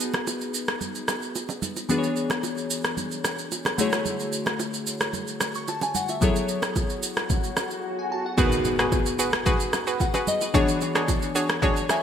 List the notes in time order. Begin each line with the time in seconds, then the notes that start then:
Already playing: B3 D#4 F#4 G#4 B4
0.00 shaker
0.14 cross-stick, low bongo, shaker
0.27 high bongo, shaker
0.41 shaker
0.54 shaker
0.68 cross-stick, shaker
0.81 low conga, shaker
0.95 shaker
1.08 cross-stick, low bongo, shaker
1.22 shaker
1.35 high bongo, shaker
1.49 low bongo, shaker
1.62 low conga, shaker
1.76 high bongo, shaker
1.89 E3 B3 D4 F#4 G#4 B4, low conga, shaker
1.98 C#5
2.04 shaker
2.16 shaker
2.30 cross-stick, low bongo, shaker
2.43 high bongo, shaker
2.57 shaker
2.70 shaker
2.84 cross-stick, shaker
2.97 low conga, shaker
3.11 shaker
3.24 cross-stick, low bongo, shaker
3.39 shaker
3.52 high bongo, shaker
3.65 cross-stick, low bongo, shaker
3.78 D3 A3 E4 F#4 G#4 C#5, low conga, shaker
3.92 cross-stick, high bongo, shaker
4.06 low conga, shaker
4.20 shaker
4.33 shaker
4.46 cross-stick, low bongo, shaker
4.59 high bongo, shaker
4.74 shaker
4.87 shaker
5.00 cross-stick, shaker
5.13 low conga, shaker
5.27 shaker
5.40 cross-stick, low bongo, shaker
5.55 C#6, shaker
5.68 A5, high bongo, shaker
5.81 G#5, low bongo, shaker
5.95 F#5, low conga, shaker
6.09 E5, high bongo, shaker
6.21 F#3 B3 E4 G#4 A4 C#5, kick, swell, low conga, shaker
6.36 shaker
6.49 shaker
6.62 cross-stick, low bongo, shaker
6.76 kick, high bongo, shaker
6.90 shaker
7.03 shaker
7.17 cross-stick, high bongo, shaker
7.30 kick, low conga, shaker
7.44 shaker
7.57 cross-stick, low bongo, shaker
7.71 shaker
7.99 G#5
8.12 A5
8.26 F#5
8.37 B3 D#4 F#4 G#4 A#4 B4, kick, impact, low conga, shaker
8.47 B4
8.52 shaker
8.65 low bongo, shaker
8.79 F#4 G#4 B4, cross-stick, shaker
8.92 kick, high bongo, shaker
9.06 shaker
9.19 F#4 G#4 B4, shaker
9.33 cross-stick, shaker
9.46 F#4 G#4 B4, kick, low conga, shaker
9.60 shaker
9.73 cross-stick, low bongo, shaker
9.87 F#4 G#4 B4, shaker
10.00 F#5, kick, high bongo, shaker
10.14 F#4 G#4 B4, low bongo, shaker
10.27 D#5, low conga, shaker
10.41 B4, high bongo, shaker
10.54 E3 B3 D4 F#4 G#4 C#5, kick, low conga, shaker
10.68 shaker
10.81 low bongo, shaker
10.95 D4 F#4 G#4 C#5, cross-stick, shaker
11.08 kick, high bongo, shaker
11.22 shaker
11.35 D4 F#4 G#4 C#5, shaker
11.49 cross-stick, shaker
11.62 D4 F#4 G#4 C#5, kick, low conga, shaker
11.76 C#5, shaker
11.89 E5 G#5, cross-stick, low bongo, shaker